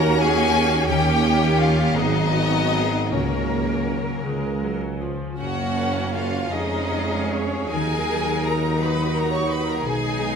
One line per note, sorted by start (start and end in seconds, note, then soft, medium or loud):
0.00 0.84 D#2 medium
0.00 0.88 D#3 medium
0.00 0.84 A#3 medium
0.00 0.86 A#3 medium
0.00 0.86 C#4 medium
0.00 1.23 C#4 medium
0.00 0.87 F#4 medium
0.00 0.91 F#4 medium
0.00 0.20 A#4 medium
0.00 2.00 A#4 medium
0.00 0.53 C#5 medium
0.00 0.19 A#5 medium
0.19 0.87 G#4 medium
0.19 0.91 F#5 medium
0.19 0.88 G#5 loud
0.54 1.99 C#5 medium
0.87 1.93 D#2 medium
0.87 1.94 D#2 medium
0.87 1.99 D#3 medium
0.87 1.93 A#3 medium
0.87 1.93 C#4 medium
0.87 1.96 G4 medium
0.87 1.60 G4 medium
0.87 1.58 G5 medium
1.24 1.59 C#4 medium
1.59 1.99 C#4 soft
1.59 3.15 D#4 soft
1.59 1.96 F4 medium
1.59 1.97 F5 medium
1.95 3.09 G#1 medium
1.95 3.13 G#1 medium
1.95 3.15 G#2 medium
1.95 3.10 F#3 medium
1.95 3.11 B3 medium
1.95 3.11 D#4 medium
1.95 2.34 G#4 medium
1.95 3.12 D#5 medium
2.34 3.15 G#3 soft
2.34 2.72 F#4 medium
2.73 3.15 B3 soft
2.73 3.87 F#4 soft
2.73 3.11 G#4 soft
3.11 4.23 C#2 medium
3.11 4.08 C#2 medium
3.11 4.20 C#3 medium
3.11 4.24 C#3 medium
3.11 4.21 F#3 medium
3.11 4.22 A#3 medium
3.11 4.23 C#4 medium
3.11 4.78 A#4 medium
3.11 4.22 C#5 medium
3.51 3.86 C#4 soft
3.87 4.62 C#4 soft
3.87 4.27 F#4 soft
4.23 5.16 C#2 soft
4.23 5.16 C#2 medium
4.23 5.42 C#3 soft
4.23 4.58 G#3 medium
4.61 5.00 F#3 soft
4.61 5.00 C#4 soft
5.00 5.38 F3 soft
5.00 6.14 C#4 soft
5.00 5.42 F4 soft
5.38 6.54 F#1 medium
5.38 6.48 F#2 medium
5.38 6.55 F#2 soft
5.38 6.47 A#3 soft
5.38 6.47 C#4 soft
5.38 6.10 F#4 medium
5.38 6.48 F#4 medium
5.38 6.11 F#5 medium
5.77 6.55 A#3 soft
6.14 7.32 C#4 soft
6.14 6.51 F4 medium
6.14 6.55 F#4 soft
6.14 6.52 F5 medium
6.52 7.72 F1 medium
6.52 7.75 F2 soft
6.52 7.72 F2 soft
6.52 7.72 G#3 medium
6.52 7.69 C#4 medium
6.52 7.32 D#4 medium
6.52 7.72 G#4 medium
6.52 7.32 D#5 medium
6.91 7.75 G#3 soft
7.33 7.72 C#4 medium
7.33 7.76 C#4 soft
7.33 7.76 G#4 soft
7.33 7.72 C#5 medium
7.70 9.80 D#2 soft
7.70 9.81 D#2 medium
7.70 9.88 D#3 soft
7.70 9.80 F#3 soft
7.70 9.80 D#4 soft
7.70 8.45 G#4 medium
7.70 8.79 A#4 medium
7.70 8.42 G#5 medium
8.11 10.36 D#4 soft
8.45 9.88 A#4 soft
8.45 8.81 A#4 medium
8.45 8.80 A#5 medium
8.80 9.84 F#4 soft
8.80 9.15 B4 medium
8.80 9.49 D#5 soft
8.80 9.16 B5 medium
9.15 9.32 A#4 medium
9.15 9.88 F#5 soft
9.15 9.33 A#5 medium
9.32 9.49 C#5 medium
9.32 9.49 C#6 medium
9.49 9.67 B4 medium
9.49 10.36 D#5 soft
9.49 9.67 B5 medium
9.66 9.84 A#4 medium
9.66 9.86 A#5 medium
9.83 10.36 B1 medium
9.83 10.36 B2 medium
9.83 10.36 G#3 medium
9.83 10.36 D#4 medium
9.83 10.36 G#4 medium
9.83 10.36 G#5 medium
10.21 10.36 B3 soft